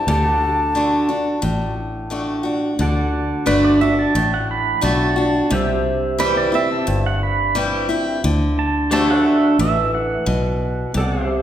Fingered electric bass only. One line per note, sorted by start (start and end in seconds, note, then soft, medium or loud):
0.07 1.11 D2 medium
1.43 2.47 A1 medium
2.79 3.31 D2 medium
3.47 4.05 G1 medium
4.15 4.73 A1 medium
4.83 5.41 B1 medium
5.51 6.55 C2 medium
6.88 7.91 G1 medium
8.24 9.27 D2 medium
9.59 10.17 A1 medium
10.27 10.85 B1 medium
10.95 11.42 C2 medium